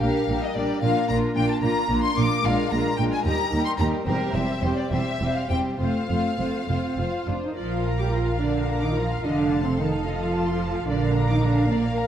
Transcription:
0.01 A#1 A#2 G3 D4 G4 A#4 F5
0.28 A#1 A#2 G3 D4 G4 A#4
0.43 D#5
0.55 A#1 A#2 G3 D4 G4 A#4 D5
0.82 A#1 A#2 A#3 D4 F4 A#4 F5
1.08 A#1 A#2 A#3 D4 F4 A#4 A#5
1.35 A#1 A#2 A#3 D4 F4 A#4 G5
1.49 A5
1.61 A#1 A#2 A#3 D4 F4 A#4 A#5
1.89 A#1 A#2 A#3 D4 F4 A#4
2.03 C6
2.16 A#1 A#2 A#3 D4 F4 A#4 D6
2.44 A#1 A#2 G#3 D4 F4 A#4 F5
2.70 A#1 A#2 G#3 D4 F4 A#4 A#5
2.97 A#1 A#2 G#3 D4 F4 A#4 G5
3.12 G#5
3.24 D#2 G3 D#4 G4 A#4 A#5
3.51 D#2 G3 D#4 G4 A#4
3.65 C6
3.78 D#2 G3 D#4 G4 A#4 A#5
4.05 E1 E2 G3 C4 G4 A#4 C5
4.34 E1 E2 G3 C4 G4 C5 E5
4.62 E1 E2 G3 C4 G4 C5
4.77 D5
4.90 E1 E2 G3 C4 G4 C5 E5
5.20 E1 E2 G3 C4 G4 C5
5.36 F5
5.49 E1 E2 G3 C4 G4 C5 G5
5.79 F1 F2 A3 C4 F4 C5 F5
6.09 F1 F2 A3 C4 F4 C5
6.38 F1 F2 A3 C4 F4 C5
6.68 F1 F2 C4 F4 C5
6.98 F1 F2 F4 C5
7.27 F1 F2 D4 F4 C5
7.43 D#4
7.56 A#1 F3 F4 A#4 D5 F5
7.71 F5
7.85 A#5
7.99 G3 G4 D6
8.12 F3 F4 A#5
8.26 F5
8.40 D3 D4 D5
8.54 F5
8.68 A#5
8.81 D#3 D#4 D6
8.97 F3 F4 A#5
9.10 F5
9.23 F1 D3 D4 A4 D#5
9.37 F5
9.50 A5
9.64 C3 C4 C6
9.78 D#3 D#4 A5
9.93 F5
10.06 F3 F4 D#5
10.21 F5
10.34 A5
10.47 C6
10.61 A5
10.75 F5
10.88 A#1 D3 D4 A#4 D5 F5
11.02 F5
11.14 A#5
11.28 D#3 D#4 D6
11.43 D3 D4 A#5
11.56 F5
11.71 A#2 A#3 D5
11.83 F5
11.97 A#5

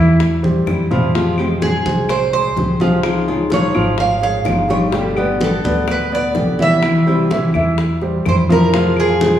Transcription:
Already playing: E2 E3 G3 C4 E4 E5
0.20 muted nylon-string guitar stroke, high bongo, high conga
0.43 G3 G4 C5, high bongo, high conga
0.66 F2 E3 G3 C4 E4, high bongo, low bongo, claves
0.91 E3 F3 G3 C4 E4 F4 F5, high bongo, low conga
1.15 C3 F3 G#3 C4 F4 G4 F5, high bongo, high conga
1.38 F3 G#3 C4 G4 C5, high conga, claves
1.62 F3 G#3 C4 G#4, high bongo, high conga
1.85 C2 G#3 C5, high bongo, high conga
2.09 C5, muted nylon-string guitar stroke, high bongo, high conga, claves
2.33 G#3 G#4 C5, high bongo, high conga
2.56 C#2 F3 G#3 C4 G4, high bongo, low bongo, high conga
2.80 F3 G#3 C4 F4 G4 G#4 F5, high bongo, high conga
3.03 C#3 F3 G#3 D#4 F4, high bongo, high conga, claves
3.28 F3 G#3 D#4 F4 G#4 C#5, high conga
3.50 F3 G#3 D#4 F4 C#5 F5, high bongo, high conga
3.74 G#1 F3 F4 F5, high bongo, high conga, claves
3.98 F5, muted nylon-string guitar stroke, high bongo, high conga
4.21 G#3 G#4 C#5 F5, high bongo, high conga
4.45 G1 F3 G#3 D#4 F4, high bongo, low bongo, high conga, claves
4.69 F3 G3 G#3 D#4 F4 G4 C#5 G5, high bongo, high conga
4.92 B2 D3 G3 B3 G4 G5, high bongo, high conga
5.17 D3 G3 B3 G4 B4 D5, high conga, claves
5.40 D3 G3 B3 G4 A4, high bongo, high conga
5.64 D2 B3 B4 D5, high bongo, high conga
5.88 B4, muted nylon-string guitar stroke, high bongo, high conga, claves
6.11 B3 B4 D5, high bongo, high conga
6.35 C2 D3 G3 B3 G4, high bongo, low bongo, high conga
6.59 D3 E3 G3 B3 E4 G4 E5, high bongo, high conga
6.83 C3 E3 G3 C4 E4, high bongo, high conga, claves
7.07 E3 G3 C4 E4 G4 C5, high conga
7.30 E3 G3 C4 E4 E5, high bongo, high conga
7.54 E2 E3 E4 E5, high bongo, high conga, claves
7.78 muted nylon-string guitar stroke, high bongo, high conga
8.01 G3 G4 C5, high bongo, high conga
8.26 F2 E3 G3 C4 E4 C5, high bongo, low bongo, high conga, claves
8.49 E3 F3 G3 C4 E4 F4 A#4 F5, high bongo, high conga
8.73 C3 F3 G#3 C4 F4 F5, high bongo, high conga
8.97 G#4, high conga, claves
9.21 F3 G#3 C4 F4 G#4 C5, high bongo, high conga

